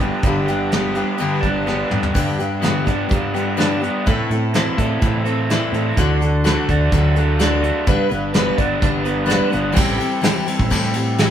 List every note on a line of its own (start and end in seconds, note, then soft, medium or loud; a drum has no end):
0.00 0.23 G2 medium
0.00 0.25 G3 soft
0.00 0.70 B3 medium
0.00 2.13 B3 medium
0.00 0.25 B3 soft
0.00 0.71 D4 medium
0.00 2.12 D4 medium
0.00 0.25 D4 medium
0.00 0.46 G4 medium
0.00 2.12 G4 medium
0.00 0.24 G4 medium
0.23 1.01 G1 medium
0.23 0.49 G2 medium
0.23 0.49 D3 medium
0.23 0.49 G3 medium
0.23 0.49 B3 medium
0.23 0.47 G4 medium
0.23 kick loud
0.23 closed hi-hat medium
0.27 0.49 D4 medium
0.48 0.72 G3 medium
0.48 0.73 B3 medium
0.48 0.73 D4 medium
0.48 0.72 G4 medium
0.48 closed hi-hat medium
0.72 0.96 G3 medium
0.72 0.96 B3 medium
0.72 0.95 D4 medium
0.72 0.95 G4 medium
0.72 snare loud
0.72 closed hi-hat medium
0.95 1.19 G3 soft
0.95 1.19 B3 medium
0.95 1.20 D4 soft
0.95 1.19 G4 medium
0.95 closed hi-hat medium
1.18 1.44 G2 medium
1.18 1.44 D3 medium
1.18 1.44 G3 medium
1.18 1.44 B3 medium
1.18 1.43 D4 medium
1.18 1.43 G4 medium
1.18 closed hi-hat medium
1.41 1.82 G1 medium
1.41 2.14 D4 medium
1.41 1.67 G4 medium
1.41 kick medium
1.41 closed hi-hat medium
1.45 1.66 G3 soft
1.45 1.66 B3 soft
1.45 1.66 D4 medium
1.67 1.91 G3 medium
1.67 1.91 B3 medium
1.67 1.91 D4 medium
1.67 1.90 G4 medium
1.67 snare medium
1.91 2.11 G2 medium
1.91 2.14 G3 soft
1.91 2.14 B3 soft
1.91 2.14 D4 soft
1.91 2.14 G4 soft
1.91 mid tom medium
2.03 floor tom medium
2.14 2.39 G2 medium
2.14 2.73 G2 medium
2.14 2.39 D3 medium
2.14 2.39 G3 medium
2.14 2.38 B3 medium
2.14 2.38 D4 medium
2.14 2.38 G4 medium
2.14 kick loud
2.14 crash medium
2.39 2.61 G3 soft
2.39 2.62 B3 medium
2.39 2.62 D4 medium
2.39 2.62 G4 medium
2.39 closed hi-hat medium
2.62 2.87 G2 medium
2.62 2.86 D3 medium
2.62 2.86 G3 medium
2.62 2.86 B3 medium
2.62 2.86 D4 medium
2.62 2.84 G4 medium
2.62 snare loud
2.62 closed hi-hat medium
2.86 3.06 G2 medium
2.86 3.08 G3 soft
2.86 3.08 B3 soft
2.86 3.09 D4 medium
2.86 3.10 G4 medium
2.86 kick medium
2.86 closed hi-hat medium
3.09 3.88 G2 loud
3.09 3.34 G3 medium
3.09 3.33 B3 medium
3.09 3.33 D4 medium
3.09 3.33 G4 medium
3.09 kick loud
3.09 closed hi-hat medium
3.34 3.56 G3 soft
3.34 3.56 B3 soft
3.34 3.57 D4 medium
3.34 3.57 G4 medium
3.34 closed hi-hat medium
3.57 3.82 G2 medium
3.57 3.82 D3 medium
3.57 3.82 G3 medium
3.57 3.81 B3 medium
3.57 3.82 D4 medium
3.57 3.80 G4 loud
3.57 snare loud
3.57 closed hi-hat medium
3.81 4.06 G3 soft
3.81 4.06 B3 soft
3.81 4.06 D4 soft
3.81 4.06 G4 medium
3.81 closed hi-hat medium
4.06 4.30 A2 medium
4.06 4.16 A2 medium
4.06 4.30 E3 medium
4.06 4.30 C4 medium
4.06 4.30 E4 medium
4.06 4.30 A4 medium
4.06 kick loud
4.06 closed hi-hat medium
4.30 4.69 A2 medium
4.30 4.54 C4 soft
4.30 4.54 E4 medium
4.30 4.54 A4 medium
4.30 closed hi-hat medium
4.54 4.78 A2 medium
4.54 4.78 E3 medium
4.54 4.79 C4 medium
4.54 4.78 E4 loud
4.54 4.77 A4 loud
4.54 snare loud
4.54 closed hi-hat medium
4.78 4.97 A2 medium
4.78 5.01 C4 soft
4.78 5.02 E4 soft
4.78 5.02 A4 medium
4.78 kick medium
4.78 closed hi-hat medium
5.02 5.60 A2 loud
5.02 5.25 E3 medium
5.02 5.26 C4 medium
5.02 5.26 E4 medium
5.02 5.24 A4 medium
5.02 kick loud
5.02 closed hi-hat medium
5.25 5.51 C4 soft
5.25 5.50 E4 soft
5.25 5.49 A4 medium
5.25 closed hi-hat medium
5.50 5.74 A2 medium
5.50 5.74 E3 medium
5.50 5.74 C4 medium
5.50 5.74 E4 medium
5.50 5.73 A4 medium
5.50 snare loud
5.50 closed hi-hat medium
5.72 5.92 A2 medium
5.72 5.97 C4 soft
5.72 5.98 E4 soft
5.72 5.97 A4 soft
5.72 closed hi-hat medium
5.97 6.55 D2 medium
5.97 6.21 D3 medium
5.97 6.21 D4 medium
5.97 6.21 F#4 medium
5.97 6.20 A4 medium
5.97 kick loud
5.97 closed hi-hat medium
6.21 6.44 D4 medium
6.21 6.43 F#4 medium
6.21 6.44 A4 medium
6.21 closed hi-hat medium
6.44 6.68 D3 medium
6.44 7.17 A3 medium
6.44 6.69 D4 medium
6.44 6.68 F#4 medium
6.44 6.68 A4 loud
6.44 snare loud
6.44 closed hi-hat medium
6.69 6.88 D2 medium
6.69 6.92 D4 medium
6.69 6.92 F#4 soft
6.69 6.92 A4 medium
6.69 kick medium
6.69 closed hi-hat medium
6.92 7.70 D2 medium
6.92 7.16 D3 medium
6.92 7.87 F#3 medium
6.92 7.16 D4 medium
6.92 7.16 F#4 medium
6.92 7.15 A4 medium
6.92 kick loud
6.92 closed hi-hat medium
7.16 7.61 A3 medium
7.16 7.38 D4 medium
7.16 7.38 F#4 soft
7.16 7.40 A4 medium
7.16 closed hi-hat medium
7.39 7.63 D3 medium
7.39 7.63 D4 medium
7.39 7.62 F#4 loud
7.39 7.61 A4 medium
7.39 snare loud
7.39 closed hi-hat medium
7.62 7.87 A3 medium
7.62 7.86 D4 soft
7.62 7.87 F#4 soft
7.62 7.86 A4 soft
7.62 closed hi-hat medium
7.86 7.97 G1 loud
7.86 9.05 G2 medium
7.86 8.11 G3 medium
7.86 8.09 B3 medium
7.86 8.11 D4 medium
7.86 8.08 B4 medium
7.86 kick loud
7.86 closed hi-hat medium
8.09 8.50 G1 medium
8.09 8.34 B3 medium
8.09 8.33 D4 soft
8.09 8.34 B4 medium
8.09 closed hi-hat medium
8.34 8.58 G3 medium
8.34 8.59 B3 medium
8.34 8.58 D4 medium
8.34 8.57 B4 medium
8.34 snare loud
8.34 closed hi-hat medium
8.58 8.78 G1 medium
8.58 8.82 B3 soft
8.58 8.81 D4 medium
8.58 8.82 B4 medium
8.58 kick medium
8.58 closed hi-hat medium
8.82 9.40 G1 medium
8.82 9.06 G3 medium
8.82 9.04 B3 medium
8.82 9.05 D4 medium
8.82 9.04 B4 medium
8.82 kick loud
8.82 closed hi-hat medium
9.05 9.26 B3 soft
9.05 9.25 D4 soft
9.05 9.26 B4 medium
9.05 closed hi-hat medium
9.26 9.51 G3 medium
9.26 9.50 B3 medium
9.26 9.51 D4 medium
9.26 9.49 B4 medium
9.26 closed hi-hat medium
9.31 snare loud
9.50 9.73 G1 medium
9.50 9.73 B3 soft
9.50 9.73 D4 soft
9.50 9.73 B4 soft
9.50 closed hi-hat medium
9.72 9.98 A2 medium
9.72 9.98 E3 medium
9.72 9.98 G3 medium
9.72 9.99 C4 loud
9.72 9.96 G4 medium
9.72 crash loud
9.72 crash medium
9.77 9.96 A1 loud
9.77 11.30 C4 medium
9.77 11.30 E4 medium
9.77 11.30 G4 medium
9.77 11.30 A4 medium
9.77 kick loud
9.98 10.20 G3 medium
9.98 10.22 C4 medium
9.98 10.22 G4 medium
9.98 crash medium
10.21 10.46 E3 medium
10.21 10.46 G3 medium
10.21 10.45 C4 medium
10.21 10.44 G4 medium
10.21 snare loud
10.21 crash medium
10.46 10.70 G3 medium
10.46 10.70 C4 medium
10.46 10.70 G4 medium
10.46 crash medium
10.59 10.69 A1 loud
10.59 kick medium
10.70 10.95 A2 medium
10.70 11.29 A2 loud
10.70 10.95 E3 medium
10.70 10.95 G3 loud
10.70 10.94 C4 medium
10.70 10.93 G4 loud
10.70 kick medium
10.70 crash medium
10.84 snare soft
10.94 11.18 G3 soft
10.94 11.18 C4 medium
10.94 11.18 G4 medium
10.94 crash medium
11.18 11.30 E3 medium
11.18 11.30 G3 medium
11.18 11.30 C4 medium
11.18 11.30 G4 medium
11.18 snare loud
11.18 crash medium